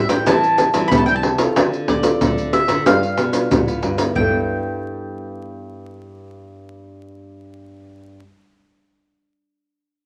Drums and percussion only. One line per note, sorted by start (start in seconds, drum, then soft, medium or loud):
0.09 pandeiro medium
0.09 maracas medium
0.27 pandeiro medium
0.27 maracas medium
0.27 surdo medium
0.43 pandeiro soft
0.43 maracas soft
0.58 pandeiro medium
0.58 maracas medium
0.74 pandeiro medium
0.74 maracas medium
0.92 pandeiro medium
0.92 maracas medium
0.92 surdo loud
1.08 pandeiro soft
1.08 maracas soft
1.23 pandeiro medium
1.38 pandeiro medium
1.38 maracas medium
1.56 pandeiro medium
1.56 maracas medium
1.56 surdo medium
1.73 pandeiro soft
1.73 maracas soft
1.88 pandeiro medium
1.88 surdo medium
2.03 pandeiro medium
2.03 maracas medium
2.21 pandeiro medium
2.21 maracas medium
2.21 surdo medium
2.38 pandeiro soft
2.38 maracas soft
2.53 pandeiro medium
2.68 pandeiro medium
2.68 maracas medium
2.86 pandeiro medium
2.86 maracas medium
2.86 surdo medium
3.03 pandeiro soft
3.03 maracas soft
3.17 pandeiro medium
3.17 maracas medium
3.33 pandeiro medium
3.33 maracas medium
3.51 pandeiro medium
3.51 maracas medium
3.51 surdo loud
3.68 pandeiro soft
3.68 maracas soft
3.83 pandeiro medium
3.98 pandeiro medium
3.98 maracas medium
4.15 surdo medium